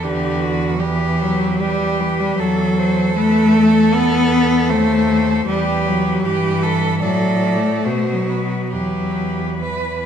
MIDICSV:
0, 0, Header, 1, 5, 480
1, 0, Start_track
1, 0, Key_signature, 1, "minor"
1, 0, Tempo, 784314
1, 1462, Time_signature, 4, 2, 24, 8
1, 1942, Tempo, 769231
1, 4342, Tempo, 847458
1, 5302, Tempo, 896861
1, 6021, End_track
2, 0, Start_track
2, 0, Title_t, "Cello"
2, 0, Program_c, 0, 42
2, 23, Note_on_c, 0, 71, 52
2, 491, Note_off_c, 0, 71, 0
2, 503, Note_on_c, 0, 71, 55
2, 974, Note_off_c, 0, 71, 0
2, 980, Note_on_c, 0, 71, 59
2, 1466, Note_on_c, 0, 69, 67
2, 1475, Note_off_c, 0, 71, 0
2, 1701, Note_on_c, 0, 72, 59
2, 1710, Note_off_c, 0, 69, 0
2, 1939, Note_on_c, 0, 71, 66
2, 1948, Note_off_c, 0, 72, 0
2, 2180, Note_on_c, 0, 69, 61
2, 2190, Note_off_c, 0, 71, 0
2, 2890, Note_on_c, 0, 72, 64
2, 2899, Note_off_c, 0, 69, 0
2, 3377, Note_on_c, 0, 71, 63
2, 3387, Note_off_c, 0, 72, 0
2, 3858, Note_off_c, 0, 71, 0
2, 3861, Note_on_c, 0, 71, 61
2, 4333, Note_off_c, 0, 71, 0
2, 4343, Note_on_c, 0, 74, 52
2, 4810, Note_on_c, 0, 72, 53
2, 4819, Note_off_c, 0, 74, 0
2, 5059, Note_on_c, 0, 71, 46
2, 5067, Note_off_c, 0, 72, 0
2, 5301, Note_off_c, 0, 71, 0
2, 5304, Note_on_c, 0, 71, 41
2, 6021, Note_off_c, 0, 71, 0
2, 6021, End_track
3, 0, Start_track
3, 0, Title_t, "Cello"
3, 0, Program_c, 1, 42
3, 19, Note_on_c, 1, 67, 54
3, 258, Note_on_c, 1, 66, 58
3, 268, Note_off_c, 1, 67, 0
3, 488, Note_on_c, 1, 67, 58
3, 497, Note_off_c, 1, 66, 0
3, 976, Note_off_c, 1, 67, 0
3, 982, Note_on_c, 1, 67, 63
3, 1463, Note_on_c, 1, 69, 61
3, 1473, Note_off_c, 1, 67, 0
3, 3370, Note_off_c, 1, 69, 0
3, 3374, Note_on_c, 1, 67, 64
3, 3844, Note_off_c, 1, 67, 0
3, 3848, Note_on_c, 1, 67, 63
3, 4100, Note_on_c, 1, 69, 63
3, 4110, Note_off_c, 1, 67, 0
3, 4337, Note_off_c, 1, 69, 0
3, 4341, Note_on_c, 1, 69, 55
3, 4810, Note_on_c, 1, 66, 46
3, 4818, Note_off_c, 1, 69, 0
3, 5302, Note_off_c, 1, 66, 0
3, 5308, Note_on_c, 1, 67, 36
3, 5726, Note_off_c, 1, 67, 0
3, 5779, Note_on_c, 1, 71, 45
3, 6021, Note_off_c, 1, 71, 0
3, 6021, End_track
4, 0, Start_track
4, 0, Title_t, "Cello"
4, 0, Program_c, 2, 42
4, 26, Note_on_c, 2, 50, 74
4, 463, Note_on_c, 2, 54, 57
4, 472, Note_off_c, 2, 50, 0
4, 499, Note_on_c, 2, 52, 75
4, 508, Note_off_c, 2, 54, 0
4, 743, Note_on_c, 2, 54, 78
4, 752, Note_off_c, 2, 52, 0
4, 982, Note_on_c, 2, 55, 81
4, 991, Note_off_c, 2, 54, 0
4, 1224, Note_on_c, 2, 52, 72
4, 1233, Note_off_c, 2, 55, 0
4, 1345, Note_on_c, 2, 55, 81
4, 1354, Note_off_c, 2, 52, 0
4, 1452, Note_off_c, 2, 55, 0
4, 1456, Note_on_c, 2, 54, 84
4, 1928, Note_off_c, 2, 54, 0
4, 1937, Note_on_c, 2, 57, 95
4, 2418, Note_on_c, 2, 59, 100
4, 2428, Note_off_c, 2, 57, 0
4, 2891, Note_on_c, 2, 57, 102
4, 2900, Note_off_c, 2, 59, 0
4, 3374, Note_off_c, 2, 57, 0
4, 3382, Note_on_c, 2, 55, 82
4, 3623, Note_on_c, 2, 54, 76
4, 3632, Note_off_c, 2, 55, 0
4, 3862, Note_on_c, 2, 52, 82
4, 3871, Note_off_c, 2, 54, 0
4, 4344, Note_on_c, 2, 54, 77
4, 4353, Note_off_c, 2, 52, 0
4, 4654, Note_on_c, 2, 57, 71
4, 4662, Note_off_c, 2, 54, 0
4, 4972, Note_on_c, 2, 54, 58
4, 4981, Note_off_c, 2, 57, 0
4, 5297, Note_off_c, 2, 54, 0
4, 5300, Note_on_c, 2, 54, 59
4, 5788, Note_on_c, 2, 52, 44
4, 5796, Note_off_c, 2, 54, 0
4, 6021, Note_off_c, 2, 52, 0
4, 6021, End_track
5, 0, Start_track
5, 0, Title_t, "Cello"
5, 0, Program_c, 3, 42
5, 0, Note_on_c, 3, 40, 60
5, 1439, Note_off_c, 3, 40, 0
5, 1463, Note_on_c, 3, 40, 64
5, 2895, Note_on_c, 3, 39, 67
5, 2904, Note_off_c, 3, 40, 0
5, 3374, Note_off_c, 3, 39, 0
5, 3378, Note_on_c, 3, 40, 65
5, 3851, Note_off_c, 3, 40, 0
5, 3860, Note_on_c, 3, 43, 61
5, 4344, Note_on_c, 3, 45, 61
5, 4352, Note_off_c, 3, 43, 0
5, 4815, Note_on_c, 3, 47, 53
5, 4824, Note_off_c, 3, 45, 0
5, 5310, Note_on_c, 3, 40, 44
5, 5318, Note_off_c, 3, 47, 0
5, 6021, Note_off_c, 3, 40, 0
5, 6021, End_track
0, 0, End_of_file